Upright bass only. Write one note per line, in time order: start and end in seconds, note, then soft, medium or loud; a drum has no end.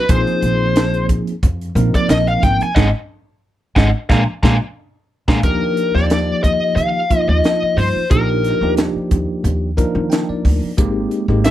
0.09 0.23 A#1 medium
0.42 1.18 A#1 medium
1.43 1.68 F2 medium
1.75 1.89 A#1 loud
1.94 muted upright bass stroke soft
2.09 2.34 A#1 medium
2.43 2.57 G#1 medium
2.61 muted upright bass stroke soft
2.76 2.90 G#1 medium
3.76 3.90 G#1 medium
4.10 4.23 A#1 medium
4.43 4.57 A#1 loud
5.28 5.39 A#1 medium
5.44 5.69 D#2 medium
5.95 6.31 D#2 medium
6.44 6.57 D#2 medium
6.76 6.90 D#3 medium
7.10 muted upright bass stroke soft
7.28 7.40 D#2 medium
7.62 muted upright bass stroke soft
7.77 7.90 G2 medium
7.96 muted upright bass stroke soft
8.11 8.50 A#1 medium
8.61 8.87 D#2 medium
8.95 muted upright bass stroke soft
9.12 9.25 D#2 medium
9.44 9.83 D#2 medium
9.95 10.20 D#3 medium
10.29 muted upright bass stroke soft
10.45 10.58 D2 medium
10.63 muted upright bass stroke soft
10.78 11.03 G#1 medium
11.28 11.51 G#1 medium